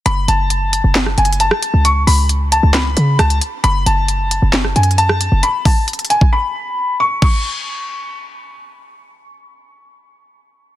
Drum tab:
CC |------------------------------------------------------------------------------------------------|------------------------------------------------------------------------------------------------|------------------------------------------------------------------------------------------------|------------------------------------------------------------------------------------------------|
HH |x-----------x-----------x-----------x-----------x-----------x---x---x---x-----------x-----------|x-----------o-----------x-----------x-----------x-----------x-----------x-----x-----x-----------|x-----------x-----------x-----------x-----------x-----------x---x---x---x-----------x-----------|x-----------o-----------x--x--x--x--x-----------------------------------------------------------|
CP |------------------------------------------------x-----------------------------------------------|------------------------------------------------x-----------------------------------------------|------------------------------------------------x-----------------------------------------------|------------------------------------------------------------------------------------------------|
SD |------------------------------------------------o-----r-----------------------r-----------------|------------------------------------------------o-----------------------r-----------------------|------------------------------------------------o-----r-----------------------r-----------------|------------------------------------------------------------------------------------------------|
BD |------------------------------------------------------------------------------------------------|------------------------------------------------------------------------------------------------|------------------------------------------------------------------------------------------------|------------o-----------------------------o-----------------------------------------------------|

CC |x-----------------------------------------------------------------------------------------------|------------------------------------------------------------------------------------------------|
HH |------------------------------------------------------------------------------------------------|------------------------------------------------------------------------------------------------|
CP |------------------------------------------------------------------------------------------------|------------------------------------------------------------------------------------------------|
SD |------------------------------------------------------------------------------------------------|------------------------------------------------------------------------------------------------|
BD |o-----------------------------------------------------------------------------------------------|------------------------------------------------------------------------------------------------|